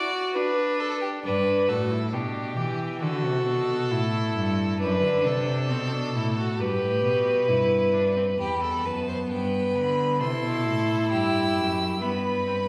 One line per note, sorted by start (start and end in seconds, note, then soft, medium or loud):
0.00 0.37 F#4 loud
0.00 0.33 D5 medium
0.34 1.24 D4 loud
0.34 0.81 B4 medium
0.80 1.00 A4 medium
1.01 1.09 G4 medium
1.24 1.70 G2 medium
1.24 1.70 D4 medium
1.24 1.70 B4 medium
1.68 2.15 A2 medium
1.68 1.92 F#4 medium
1.68 2.14 A4 medium
1.91 2.12 E4 medium
2.13 2.57 B2 medium
2.13 2.58 D4 medium
2.13 3.01 G4 medium
2.57 3.04 E3 medium
2.57 3.01 G4 medium
3.02 3.26 D3 medium
3.02 3.93 F#4 medium
3.02 4.77 A4 medium
3.25 3.46 C3 medium
3.47 3.93 B2 medium
3.91 4.35 A2 medium
3.91 4.80 E4 medium
4.36 4.80 G2 medium
4.80 5.02 F#2 medium
4.80 5.71 D4 medium
4.80 5.27 B4 medium
5.03 5.27 D3 medium
5.25 5.72 C3 medium
5.25 6.62 A4 medium
5.70 6.17 B2 medium
5.70 5.94 C4 medium
5.92 6.14 D4 medium
6.15 6.61 A2 medium
6.15 6.37 E4 medium
6.38 6.59 F#4 medium
6.60 6.81 G2 medium
6.60 7.50 G4 medium
6.60 8.39 B4 medium
6.82 7.03 A2 medium
7.04 7.50 B2 medium
7.48 8.38 G2 medium
7.48 7.95 E4 medium
7.94 8.16 D4 medium
8.16 8.24 C4 medium
8.39 8.86 E2 medium
8.39 10.22 B3 medium
8.39 8.61 G4 medium
8.39 8.87 B5 medium
8.63 8.87 A4 medium
8.85 9.30 F#2 medium
8.85 9.07 B4 medium
8.85 9.30 A5 medium
9.08 9.16 C5 medium
9.31 9.75 G2 medium
9.31 10.19 B4 medium
9.31 9.77 G5 medium
9.75 10.22 D3 medium
9.75 10.20 B5 medium
10.20 10.42 C3 medium
10.20 12.01 E4 medium
10.20 11.10 A4 medium
10.20 11.10 C6 medium
10.43 10.67 B2 medium
10.65 11.13 A2 medium
11.11 11.56 G2 medium
11.11 12.00 G4 medium
11.11 12.03 E6 medium
11.57 12.01 F#2 medium
12.02 12.68 G2 medium
12.02 12.46 B3 medium
12.02 12.68 B4 medium
12.02 12.68 B5 medium
12.47 12.55 C4 medium